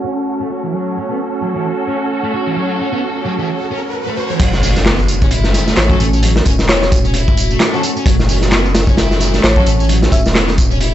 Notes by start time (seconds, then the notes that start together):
Already playing: A3 C#4 F#4 A4
0.04 C#4
0.40 A3
0.50 F#4
0.63 E3
0.73 F#3 C#4 F#4 A4, riser
0.96 C#4
1.09 B3
1.42 F#3
1.55 E3
1.88 C#4
2.24 A3
2.34 F#4
2.47 E3
2.56 F#3
2.80 C#4
2.93 B3
3.25 F#3
3.39 E3
3.71 C#4
4.07 A3
4.17 F#4
4.30 E3
4.40 F#1 F#3 A3 C#4 F#4, kick, closed hi-hat, crash, tambourine, impact
4.53 snare, tambourine
4.63 C#4, open hi-hat, tambourine
4.76 snare, tambourine
4.85 B3, snare, clap, closed hi-hat, tambourine
4.99 tambourine
5.08 closed hi-hat, tambourine
5.22 C#4, kick, tambourine
5.31 F#1 E4, closed hi-hat, tambourine
5.44 snare, tambourine
5.54 snare, closed hi-hat, tambourine
5.67 A3, snare, tambourine
5.76 A1 C#5, snare, clap, closed hi-hat, tambourine
5.90 F#3 C#4 F#4 A4, kick, tambourine
6.00 A1 A3, closed hi-hat, tambourine
6.13 C#4, tambourine
6.23 F#3, closed hi-hat, tambourine
6.36 snare, tambourine
6.45 E1 C#4, kick, closed hi-hat, tambourine
6.59 snare, tambourine
6.69 B3 C#5, snare, clap, closed hi-hat, tambourine
6.82 C#5, snare, tambourine
6.92 kick, closed hi-hat, tambourine
7.05 C#4, tambourine
7.14 E4, closed hi-hat, tambourine
7.28 kick, tambourine
7.37 closed hi-hat, tambourine
7.51 A3, tambourine
7.60 snare, clap, closed hi-hat, tambourine
7.74 F#3 C#4 F#4 A4, tambourine
7.83 A3, closed hi-hat, tambourine
7.97 C#4, tambourine
8.06 F#1 F#3, kick, closed hi-hat, tambourine
8.19 snare, tambourine
8.29 C#4, open hi-hat, tambourine
8.42 snare, tambourine
8.51 B3, snare, clap, closed hi-hat, tambourine
8.65 tambourine
8.75 snare, closed hi-hat, tambourine
8.87 C#4, kick, tambourine
8.97 F#1 E4, snare, closed hi-hat, tambourine
9.11 snare, tambourine
9.20 snare, closed hi-hat, tambourine
9.34 A3, snare, tambourine
9.43 A1 C#5, snare, clap, closed hi-hat, tambourine
9.56 F#3 C#4 F#4 A4, kick, tambourine
9.66 A1 A3, closed hi-hat, tambourine
9.80 C#4, tambourine
9.89 F#3, closed hi-hat, tambourine
10.02 snare, tambourine
10.12 E1 C#4 E5, kick, closed hi-hat, tambourine
10.25 snare, tambourine
10.35 B3, snare, clap, closed hi-hat, tambourine
10.48 snare, tambourine
10.58 kick, closed hi-hat, tambourine
10.71 C#4, tambourine
10.81 E4, closed hi-hat, tambourine